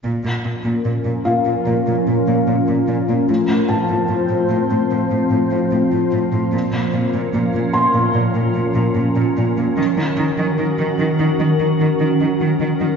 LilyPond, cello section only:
\new Staff \with { instrumentName = "Cello section" } { \clef bass \time 4/4 \key bes \minor \tempo 4 = 74 bes,16 bes,16 bes,16 bes,16 bes,16 bes,16 bes,16 bes,16 bes,16 bes,16 bes,16 bes,16 bes,16 bes,16 bes,16 bes,16 | a,16 a,16 a,16 a,16 a,16 a,16 a,16 a,16 a,16 a,16 a,16 a,16 a,16 a,16 a,16 a,16 | bes,16 bes,16 bes,16 bes,16 bes,16 bes,16 bes,16 bes,16 bes,16 bes,16 bes,16 bes,16 bes,16 bes,16 bes,16 bes,16 | ees16 ees16 ees16 ees16 ees16 ees16 ees16 ees16 ees16 ees16 ees16 ees16 ees16 ees16 ees16 ees16 | }